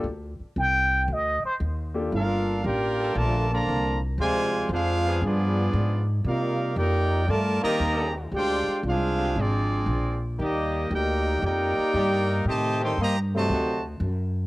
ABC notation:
X:1
M:4/4
L:1/8
Q:"Swing" 1/4=116
K:Gm
V:1 name="Muted trumpet"
z2 g2 e c z2 | z8 | z8 | z8 |
z8 | z8 | z8 |]
V:2 name="Trumpet section"
z8 | [DABf]2 [FBdg]2 [FBda] [Fdab]2 z | [Fcd_a]2 [D_Acf]2 [=B,FAd]3 z | [EBdf]2 [EBdg]2 [FBda] [Gdeb]2 z |
[Fcdg]2 [D_Acf]2 [CFAd]3 z | [B,Gde]2 [EBdg]2 [EBdg]4 | [Gcea] [Aegc'] [Gceb] [^Fcea]2 z3 |]
V:3 name="Grand piano"
z6 z [B,DFGA] | z8 | z8 | z8 |
z8 | z8 | z8 |]
V:4 name="Trombone section"
z8 | z3 [G,B,FA]3 z2 | z3 [F,=B,F_A]3 z2 | z4 z [E,CEB]3 |
z3 [D,_A,CG] z4 | [E,B,EG]3 z3 [E,B,Gd]2 | z [E,A,CG] z2 [E,CD^F] z3 |]
V:5 name="Trombone section"
z8 | [B,DF]2 [B,DG]2 [D,F,A,] [D,F,B,]2 z | [C,F,_A,]2 [A,CF]2 [F,=B,D]3 z | [G,B,F]2 [B,EG]2 A, [E,G,B,]2 z |
[_A,DG]2 [A,DF]2 [F,A,D]3 z | [G,B,E]2 [B,EG]2 [B,EG]4 | [C,E,A,] [E,G,C] B, [C,^F,A,]2 z3 |]
V:6 name="Upright bass" clef=bass
D,, z C,,2 D,, z E,,2 | G,,,2 A,,,2 B,,,2 C,,2 | D,,2 F,,2 G,,2 _A,,2 | C,2 F,,2 G,, z E,,2 |
D,, z C,,2 _A,,,2 B,,,2 | E,,2 D,,2 F,, z G,,2 | A,,2 G,,2 D,,2 ^F,,2 |]